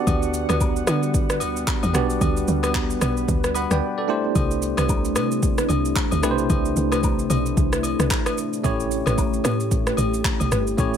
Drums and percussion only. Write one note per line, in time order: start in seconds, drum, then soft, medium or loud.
0.07 kick loud
0.07 high agogo medium
0.07 shaker medium
0.23 shaker medium
0.34 shaker medium
0.49 cross-stick medium
0.49 high agogo medium
0.49 shaker medium
0.61 kick loud
0.61 low woodblock medium
0.61 shaker medium
0.76 shaker medium
0.87 cross-stick loud
0.87 high agogo medium
0.87 shaker loud
1.03 shaker medium
1.14 kick loud
1.14 shaker medium
1.30 cross-stick loud
1.30 shaker medium
1.40 high agogo medium
1.40 shaker medium
1.57 shaker medium
1.67 kick loud
1.67 clap medium
1.67 low woodblock medium
1.67 shaker medium
1.83 high agogo medium
1.83 shaker medium
1.95 cross-stick loud
1.95 shaker medium
2.10 shaker medium
2.21 kick loud
2.21 high agogo medium
2.21 shaker medium
2.37 shaker medium
2.48 shaker medium
2.63 cross-stick medium
2.63 high agogo medium
2.63 shaker medium
2.75 kick loud
2.75 clap loud
2.75 low woodblock medium
2.75 shaker medium
2.90 shaker medium
3.01 cross-stick loud
3.01 high agogo medium
3.01 shaker loud
3.17 shaker medium
3.28 kick loud
3.28 shaker medium
3.44 cross-stick loud
3.44 shaker medium
3.55 high agogo medium
3.55 shaker medium
3.71 cross-stick medium
3.71 shaker medium
4.35 kick loud
4.35 high agogo medium
4.35 shaker medium
4.51 shaker medium
4.62 shaker medium
4.77 cross-stick loud
4.77 high agogo medium
4.77 shaker medium
4.89 kick loud
4.89 low woodblock medium
4.89 shaker medium
5.05 shaker medium
5.16 cross-stick loud
5.16 high agogo medium
5.16 shaker loud
5.31 shaker medium
5.43 kick loud
5.43 shaker medium
5.58 cross-stick loud
5.58 shaker medium
5.69 high agogo medium
5.69 shaker medium
5.85 shaker medium
5.96 kick loud
5.96 clap medium
5.96 low woodblock medium
5.96 shaker medium
6.11 high agogo medium
6.11 shaker medium
6.23 cross-stick loud
6.23 shaker loud
6.38 shaker medium
6.50 kick loud
6.50 high agogo medium
6.50 shaker medium
6.65 shaker medium
6.76 shaker medium
6.92 cross-stick medium
6.92 high agogo medium
6.92 shaker medium
7.03 kick loud
7.03 low woodblock medium
7.03 shaker medium
7.19 shaker medium
7.30 high agogo medium
7.30 shaker loud
7.46 shaker medium
7.57 kick loud
7.57 shaker medium
7.73 cross-stick loud
7.73 shaker medium
7.83 high agogo medium
7.83 shaker medium
8.00 cross-stick medium
8.00 shaker medium
8.10 kick loud
8.10 clap loud
8.10 low woodblock medium
8.10 shaker medium
8.26 cross-stick loud
8.26 high agogo medium
8.26 shaker medium
8.38 shaker loud
8.53 shaker medium
8.64 kick loud
8.64 high agogo medium
8.64 shaker medium
8.80 shaker medium
8.91 shaker medium
9.06 cross-stick medium
9.06 high agogo medium
9.06 shaker medium
9.18 kick medium
9.18 low woodblock medium
9.18 shaker medium
9.33 shaker medium
9.44 cross-stick loud
9.44 high agogo medium
9.44 shaker loud
9.60 shaker medium
9.71 kick loud
9.71 shaker medium
9.87 cross-stick loud
9.87 shaker medium
9.97 high agogo medium
9.97 shaker medium
10.14 shaker medium
10.24 kick loud
10.24 clap loud
10.24 low woodblock medium
10.24 shaker medium
10.40 high agogo medium
10.40 shaker medium
10.52 cross-stick loud
10.52 shaker loud
10.67 shaker medium
10.78 kick loud
10.78 high agogo medium
10.78 shaker medium
10.94 shaker medium